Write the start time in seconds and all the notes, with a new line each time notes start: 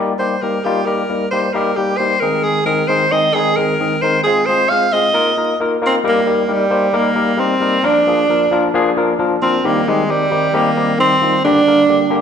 Already playing: G3 A#3 D#4 G4
0.19 G3 A#3 D#4 G4 C5
0.42 G3 A#3 D#4 G4 A#4
0.64 G3 A#3 D#4 F4 G4
0.85 G3 A#3 D#4 G4 A#4
1.09 G3 A#3 D#4 A#4
1.31 G3 A#3 D#4 G4 C5
1.53 G3 A#3 D#4 G4 A#4
1.76 G3 A#3 D#4 G4
1.97 G3 A#3 D#4 G4 C5
2.20 D#3 G#3 C4 D#4 G#4 A#4
2.43 G#4
2.66 D#3 G#3 C4 D#4 G#4 A#4
2.88 D#3 G#3 C4 D#4 G#4 C5
3.11 D#3 G#3 C4 D#4 G#4 D#5
3.34 D#3 G#3 C4 D#4 G#4
3.56 D#3 G#3 C4 D#4 G#4 A#4
3.80 D#3 G#3 C4 D#4 G#4
4.02 D#3 G#3 C4 D#4 A#4 C5
4.23 G#3 C4 F4 G#4
4.46 G#3 C4 F4 G#4 C5
4.69 G#3 C4 F4 G#4 F5
4.92 G#3 C4 F4 G#4 D#5
5.13 A#3 D#4 F4 A#4
5.37 A#3 D#4 F4 A#4
5.60 A#3 D#4 F4 A#4
5.82 A#3 D#4 F4 A#4
5.86 C4
6.04 G3 A#3 D#4 G4 A#4
6.09 A#3
6.26 G3 A#3 D#4 G4 A#4
6.48 G3 A#3 D#4 G4 A#4
6.52 G3
6.70 G3 A#3 D#4 G4 C5
6.93 G3 A#3 D#4 G4 A#4
7.15 G3 A#3 D#4 G4 A#4
7.37 G3 A#3 C4 D#4 G4 A#4
7.60 G3 A#3 D#4 G4 A#4
7.83 F3 A#3 D4 F4 A#4
8.07 F3 A#3 D4 F4 G#4
8.29 F3 A#3 D4 F4 A#4
8.51 F3 A#3 D4 F4 A#4
8.74 F3 A#3 D4 F4 G#4
8.97 F3 A#3 D4 F4 A#4
9.19 F3 A#3 D4 F4 A#4
9.42 F3 A#3 C4 D4 F4 A#4
9.64 D#3 G3 A#3 C4 D#4 G4
9.87 D#3 G3 G#3 C4 D#4 G4
10.09 D#3 G3 C4 D#4 G4
10.31 D#3 G3 C4 D#4 G4
10.54 D#3 G3 A#3 C4 D#4 G4
10.77 D#3 G3 C4 D#4 G4
10.98 D#3 G3 C4 D#4 G4
11.21 D#3 G3 C4 D#4 F4
11.44 D3 G3 A#3 D4 G4
11.67 D3 G3 A#3 D4 A#4
11.89 D3 G3 A#3 D4 G4
12.10 D3 G3 A#3 D4 G4